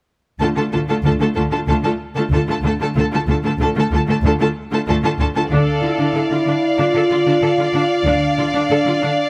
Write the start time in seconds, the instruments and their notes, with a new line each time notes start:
0.40 double bass section D2, cello section D3, viola section A3 F4, violin section A4 A5
0.56 cello section D3, viola section A3 F4, violin section A4 A5
0.72 double bass section D2, cello section D3, viola section A3 F4, violin section A4 A5
0.88 cello section D3, viola section A3 F4, violin section A4 A5
1.03 double bass section D2, cello section D3, viola section A3 F4, violin section A4 A5
1.19 cello section D3, viola section A3 F4, violin section A4 A5
1.35 double bass section D2, cello section D3, viola section A3 F4, violin section A4 A5
1.51 cello section D3, viola section A3 F4, violin section A4 A5
1.67 double bass section D2, cello section D3, viola section A3 F4, violin section A4 A5
1.83 cello section D3, viola section A3 F4, violin section A4 A5
2.16 cello section D3, viola section A3 F4, violin section A4 A5
2.30 double bass section D2, cello section D3, viola section A3 F4, violin section A4 A5
2.48 cello section D3, viola section A3 F4, violin section A4 A5
2.63 double bass section D2, cello section D3, viola section A3 F4, violin section A4 A5
2.80 cello section D3, viola section A3 F4, violin section A4 A5
2.95 double bass section D2, cello section D3, viola section A3 F4, violin section A4 A5
3.12 cello section D3, viola section A3 F4, violin section A4 A5
3.28 double bass section D2, cello section D3, viola section A3 F4, violin section A4 A5
3.44 cello section D3, viola section A3 F4, violin section A4 A5
3.58 double bass section D2, cello section D3, viola section A3 F4, violin section A4 A5
3.76 cello section D3, viola section A3 F4, violin section A4
3.80 violin section A5
3.90 double bass section D2, cello section D3, viola section A3 F4, violin section A4
3.95 violin section A5
4.07 cello section D3, viola section A3 F4, violin section A4 A5
4.22 double bass section D2, cello section D3, viola section A3 F4, violin section A4 A5
4.40 cello section D3, viola section A3 F4, violin section A4 A5
4.72 cello section D3, viola section A3 F4, violin section A4 A5
4.87 double bass section D2, cello section D3, viola section A3 F4, violin section A4 A5
5.03 cello section D3, viola section A3 F4, violin section A4 A5
5.19 double bass section D2, cello section D3, viola section A3 F4, violin section A4 A5
5.35 cello section D3, viola section A3 F4, violin section A4 A5
5.50 double bass section D2, cello section D3, french horn section D4, viola section D4 A4, violin section D5 F5
5.81 cello section D3, french horn section E4, viola section F4
5.98 cello section D3, viola section D4
6.14 cello section D3, viola section A4
6.30 cello section D3, viola section F4
6.45 cello section D3, viola section D4
6.79 cello section D3, viola section D4, french horn section F4
6.94 cello section D3, viola section A4
7.11 cello section D3, viola section F4
7.26 cello section D3, viola section D4
7.42 cello section D3, viola section A4
7.58 cello section D3, viola section F4
7.74 cello section D3, viola section D4
8.05 double bass section D2, cello section D3, french horn section D4, viola section D4
8.38 cello section D3, viola section F4
8.54 cello section D3, viola section D4
8.70 cello section D3, viola section A4
8.86 cello section D3, viola section F4
9.02 cello section D3, viola section D4